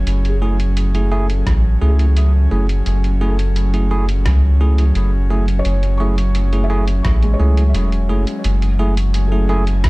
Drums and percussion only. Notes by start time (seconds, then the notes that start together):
0.07 closed hi-hat
0.25 closed hi-hat
0.60 closed hi-hat
0.77 closed hi-hat
0.95 closed hi-hat
1.30 closed hi-hat
1.47 kick, cross-stick, closed hi-hat
1.99 closed hi-hat
2.17 closed hi-hat
2.69 closed hi-hat
2.86 closed hi-hat
3.04 closed hi-hat
3.39 closed hi-hat
3.56 closed hi-hat
3.74 closed hi-hat
4.09 closed hi-hat
4.26 kick, cross-stick, closed hi-hat
4.78 closed hi-hat
4.95 closed hi-hat
5.48 closed hi-hat
5.65 closed hi-hat
5.83 closed hi-hat
6.18 closed hi-hat
6.35 closed hi-hat
6.53 closed hi-hat
6.88 closed hi-hat
7.05 kick, cross-stick, closed hi-hat
7.23 closed hi-hat
7.57 closed hi-hat
7.75 closed hi-hat
7.92 closed hi-hat
8.27 closed hi-hat
8.44 closed hi-hat
8.62 closed hi-hat
8.97 closed hi-hat
9.14 closed hi-hat
9.67 closed hi-hat
9.84 kick, cross-stick, closed hi-hat